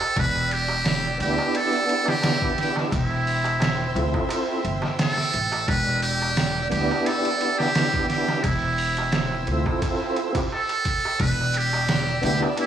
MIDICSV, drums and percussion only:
0, 0, Header, 1, 3, 480
1, 0, Start_track
1, 0, Tempo, 689655
1, 114, Time_signature, 4, 2, 24, 8
1, 8814, End_track
2, 0, Start_track
2, 0, Title_t, "Darbuka"
2, 5, Note_on_c, 9, 63, 81
2, 75, Note_off_c, 9, 63, 0
2, 112, Note_on_c, 9, 63, 66
2, 182, Note_off_c, 9, 63, 0
2, 247, Note_on_c, 9, 63, 43
2, 316, Note_off_c, 9, 63, 0
2, 476, Note_on_c, 9, 63, 80
2, 546, Note_off_c, 9, 63, 0
2, 588, Note_on_c, 9, 63, 64
2, 658, Note_off_c, 9, 63, 0
2, 726, Note_on_c, 9, 63, 37
2, 795, Note_off_c, 9, 63, 0
2, 964, Note_on_c, 9, 63, 84
2, 1033, Note_off_c, 9, 63, 0
2, 1071, Note_on_c, 9, 63, 61
2, 1140, Note_off_c, 9, 63, 0
2, 1203, Note_on_c, 9, 63, 37
2, 1273, Note_off_c, 9, 63, 0
2, 1432, Note_on_c, 9, 63, 80
2, 1501, Note_off_c, 9, 63, 0
2, 1546, Note_on_c, 9, 63, 67
2, 1616, Note_off_c, 9, 63, 0
2, 1682, Note_on_c, 9, 63, 36
2, 1751, Note_off_c, 9, 63, 0
2, 1920, Note_on_c, 9, 63, 83
2, 1990, Note_off_c, 9, 63, 0
2, 2028, Note_on_c, 9, 63, 67
2, 2098, Note_off_c, 9, 63, 0
2, 2157, Note_on_c, 9, 63, 36
2, 2227, Note_off_c, 9, 63, 0
2, 2397, Note_on_c, 9, 63, 72
2, 2467, Note_off_c, 9, 63, 0
2, 2507, Note_on_c, 9, 63, 72
2, 2577, Note_off_c, 9, 63, 0
2, 2633, Note_on_c, 9, 63, 41
2, 2702, Note_off_c, 9, 63, 0
2, 2881, Note_on_c, 9, 63, 71
2, 2951, Note_off_c, 9, 63, 0
2, 2985, Note_on_c, 9, 63, 72
2, 3055, Note_off_c, 9, 63, 0
2, 3122, Note_on_c, 9, 63, 37
2, 3192, Note_off_c, 9, 63, 0
2, 3354, Note_on_c, 9, 63, 84
2, 3424, Note_off_c, 9, 63, 0
2, 3470, Note_on_c, 9, 63, 65
2, 3540, Note_off_c, 9, 63, 0
2, 3598, Note_on_c, 9, 63, 40
2, 3667, Note_off_c, 9, 63, 0
2, 3842, Note_on_c, 9, 63, 80
2, 3912, Note_off_c, 9, 63, 0
2, 3958, Note_on_c, 9, 63, 65
2, 4028, Note_off_c, 9, 63, 0
2, 4095, Note_on_c, 9, 63, 36
2, 4165, Note_off_c, 9, 63, 0
2, 4327, Note_on_c, 9, 63, 68
2, 4397, Note_off_c, 9, 63, 0
2, 4434, Note_on_c, 9, 63, 62
2, 4504, Note_off_c, 9, 63, 0
2, 4569, Note_on_c, 9, 63, 40
2, 4638, Note_off_c, 9, 63, 0
2, 4811, Note_on_c, 9, 63, 75
2, 4880, Note_off_c, 9, 63, 0
2, 4927, Note_on_c, 9, 63, 66
2, 4996, Note_off_c, 9, 63, 0
2, 5053, Note_on_c, 9, 63, 37
2, 5123, Note_off_c, 9, 63, 0
2, 5289, Note_on_c, 9, 63, 74
2, 5359, Note_off_c, 9, 63, 0
2, 5400, Note_on_c, 9, 63, 58
2, 5469, Note_off_c, 9, 63, 0
2, 5532, Note_on_c, 9, 63, 41
2, 5601, Note_off_c, 9, 63, 0
2, 5765, Note_on_c, 9, 63, 75
2, 5835, Note_off_c, 9, 63, 0
2, 5877, Note_on_c, 9, 63, 61
2, 5946, Note_off_c, 9, 63, 0
2, 6005, Note_on_c, 9, 63, 37
2, 6075, Note_off_c, 9, 63, 0
2, 6252, Note_on_c, 9, 63, 72
2, 6322, Note_off_c, 9, 63, 0
2, 6360, Note_on_c, 9, 63, 64
2, 6430, Note_off_c, 9, 63, 0
2, 6484, Note_on_c, 9, 63, 37
2, 6554, Note_off_c, 9, 63, 0
2, 6725, Note_on_c, 9, 63, 68
2, 6794, Note_off_c, 9, 63, 0
2, 6841, Note_on_c, 9, 63, 54
2, 6910, Note_off_c, 9, 63, 0
2, 6975, Note_on_c, 9, 63, 36
2, 7044, Note_off_c, 9, 63, 0
2, 7206, Note_on_c, 9, 63, 67
2, 7275, Note_off_c, 9, 63, 0
2, 7324, Note_on_c, 9, 63, 60
2, 7394, Note_off_c, 9, 63, 0
2, 7447, Note_on_c, 9, 63, 34
2, 7516, Note_off_c, 9, 63, 0
2, 7692, Note_on_c, 9, 63, 66
2, 7762, Note_off_c, 9, 63, 0
2, 7796, Note_on_c, 9, 63, 58
2, 7866, Note_off_c, 9, 63, 0
2, 7932, Note_on_c, 9, 63, 39
2, 8001, Note_off_c, 9, 63, 0
2, 8165, Note_on_c, 9, 63, 78
2, 8235, Note_off_c, 9, 63, 0
2, 8277, Note_on_c, 9, 63, 56
2, 8347, Note_off_c, 9, 63, 0
2, 8404, Note_on_c, 9, 63, 34
2, 8474, Note_off_c, 9, 63, 0
2, 8647, Note_on_c, 9, 63, 80
2, 8717, Note_off_c, 9, 63, 0
2, 8747, Note_on_c, 9, 63, 62
2, 8814, Note_off_c, 9, 63, 0
2, 8814, End_track
3, 0, Start_track
3, 0, Title_t, "Drums"
3, 115, Note_on_c, 9, 36, 106
3, 115, Note_on_c, 9, 51, 84
3, 184, Note_off_c, 9, 36, 0
3, 185, Note_off_c, 9, 51, 0
3, 356, Note_on_c, 9, 51, 69
3, 426, Note_off_c, 9, 51, 0
3, 595, Note_on_c, 9, 51, 83
3, 597, Note_on_c, 9, 38, 113
3, 664, Note_off_c, 9, 51, 0
3, 667, Note_off_c, 9, 38, 0
3, 836, Note_on_c, 9, 51, 70
3, 906, Note_off_c, 9, 51, 0
3, 1077, Note_on_c, 9, 51, 90
3, 1146, Note_off_c, 9, 51, 0
3, 1202, Note_on_c, 9, 51, 47
3, 1272, Note_off_c, 9, 51, 0
3, 1317, Note_on_c, 9, 51, 74
3, 1386, Note_off_c, 9, 51, 0
3, 1449, Note_on_c, 9, 38, 43
3, 1518, Note_off_c, 9, 38, 0
3, 1554, Note_on_c, 9, 51, 86
3, 1557, Note_on_c, 9, 38, 114
3, 1624, Note_off_c, 9, 51, 0
3, 1627, Note_off_c, 9, 38, 0
3, 1683, Note_on_c, 9, 36, 95
3, 1752, Note_off_c, 9, 36, 0
3, 1796, Note_on_c, 9, 51, 65
3, 1798, Note_on_c, 9, 38, 38
3, 1865, Note_off_c, 9, 51, 0
3, 1868, Note_off_c, 9, 38, 0
3, 1928, Note_on_c, 9, 38, 42
3, 1997, Note_off_c, 9, 38, 0
3, 2034, Note_on_c, 9, 36, 109
3, 2035, Note_on_c, 9, 51, 84
3, 2104, Note_off_c, 9, 36, 0
3, 2104, Note_off_c, 9, 51, 0
3, 2277, Note_on_c, 9, 46, 78
3, 2347, Note_off_c, 9, 46, 0
3, 2405, Note_on_c, 9, 51, 45
3, 2474, Note_off_c, 9, 51, 0
3, 2517, Note_on_c, 9, 51, 88
3, 2520, Note_on_c, 9, 38, 108
3, 2587, Note_off_c, 9, 51, 0
3, 2589, Note_off_c, 9, 38, 0
3, 2758, Note_on_c, 9, 51, 68
3, 2827, Note_off_c, 9, 51, 0
3, 2882, Note_on_c, 9, 36, 84
3, 2952, Note_off_c, 9, 36, 0
3, 2996, Note_on_c, 9, 51, 93
3, 3066, Note_off_c, 9, 51, 0
3, 3234, Note_on_c, 9, 51, 66
3, 3303, Note_off_c, 9, 51, 0
3, 3367, Note_on_c, 9, 38, 36
3, 3436, Note_off_c, 9, 38, 0
3, 3473, Note_on_c, 9, 51, 90
3, 3476, Note_on_c, 9, 38, 110
3, 3542, Note_off_c, 9, 51, 0
3, 3545, Note_off_c, 9, 38, 0
3, 3606, Note_on_c, 9, 38, 39
3, 3675, Note_off_c, 9, 38, 0
3, 3713, Note_on_c, 9, 51, 65
3, 3783, Note_off_c, 9, 51, 0
3, 3845, Note_on_c, 9, 51, 42
3, 3915, Note_off_c, 9, 51, 0
3, 3953, Note_on_c, 9, 36, 107
3, 3954, Note_on_c, 9, 51, 85
3, 4023, Note_off_c, 9, 36, 0
3, 4024, Note_off_c, 9, 51, 0
3, 4192, Note_on_c, 9, 51, 67
3, 4262, Note_off_c, 9, 51, 0
3, 4433, Note_on_c, 9, 51, 80
3, 4436, Note_on_c, 9, 38, 107
3, 4503, Note_off_c, 9, 51, 0
3, 4505, Note_off_c, 9, 38, 0
3, 4674, Note_on_c, 9, 51, 69
3, 4744, Note_off_c, 9, 51, 0
3, 4916, Note_on_c, 9, 51, 96
3, 4985, Note_off_c, 9, 51, 0
3, 5046, Note_on_c, 9, 51, 46
3, 5115, Note_off_c, 9, 51, 0
3, 5156, Note_on_c, 9, 51, 68
3, 5225, Note_off_c, 9, 51, 0
3, 5289, Note_on_c, 9, 38, 40
3, 5359, Note_off_c, 9, 38, 0
3, 5396, Note_on_c, 9, 51, 86
3, 5399, Note_on_c, 9, 38, 116
3, 5465, Note_off_c, 9, 51, 0
3, 5468, Note_off_c, 9, 38, 0
3, 5524, Note_on_c, 9, 36, 92
3, 5593, Note_off_c, 9, 36, 0
3, 5635, Note_on_c, 9, 51, 65
3, 5638, Note_on_c, 9, 38, 39
3, 5705, Note_off_c, 9, 51, 0
3, 5707, Note_off_c, 9, 38, 0
3, 5766, Note_on_c, 9, 38, 43
3, 5835, Note_off_c, 9, 38, 0
3, 5872, Note_on_c, 9, 51, 87
3, 5873, Note_on_c, 9, 36, 116
3, 5942, Note_off_c, 9, 51, 0
3, 5943, Note_off_c, 9, 36, 0
3, 6112, Note_on_c, 9, 46, 85
3, 6182, Note_off_c, 9, 46, 0
3, 6243, Note_on_c, 9, 51, 45
3, 6312, Note_off_c, 9, 51, 0
3, 6349, Note_on_c, 9, 51, 77
3, 6352, Note_on_c, 9, 38, 110
3, 6419, Note_off_c, 9, 51, 0
3, 6422, Note_off_c, 9, 38, 0
3, 6592, Note_on_c, 9, 51, 69
3, 6661, Note_off_c, 9, 51, 0
3, 6723, Note_on_c, 9, 36, 87
3, 6793, Note_off_c, 9, 36, 0
3, 6834, Note_on_c, 9, 36, 105
3, 6835, Note_on_c, 9, 51, 84
3, 6904, Note_off_c, 9, 36, 0
3, 6904, Note_off_c, 9, 51, 0
3, 7074, Note_on_c, 9, 51, 64
3, 7144, Note_off_c, 9, 51, 0
3, 7203, Note_on_c, 9, 36, 99
3, 7203, Note_on_c, 9, 51, 83
3, 7272, Note_off_c, 9, 36, 0
3, 7272, Note_off_c, 9, 51, 0
3, 7442, Note_on_c, 9, 51, 57
3, 7512, Note_off_c, 9, 51, 0
3, 7552, Note_on_c, 9, 51, 74
3, 7554, Note_on_c, 9, 36, 93
3, 7622, Note_off_c, 9, 51, 0
3, 7624, Note_off_c, 9, 36, 0
3, 7792, Note_on_c, 9, 51, 87
3, 7793, Note_on_c, 9, 36, 112
3, 7862, Note_off_c, 9, 51, 0
3, 7863, Note_off_c, 9, 36, 0
3, 8032, Note_on_c, 9, 51, 65
3, 8101, Note_off_c, 9, 51, 0
3, 8272, Note_on_c, 9, 51, 83
3, 8275, Note_on_c, 9, 38, 107
3, 8342, Note_off_c, 9, 51, 0
3, 8344, Note_off_c, 9, 38, 0
3, 8512, Note_on_c, 9, 51, 72
3, 8582, Note_off_c, 9, 51, 0
3, 8752, Note_on_c, 9, 51, 94
3, 8814, Note_off_c, 9, 51, 0
3, 8814, End_track
0, 0, End_of_file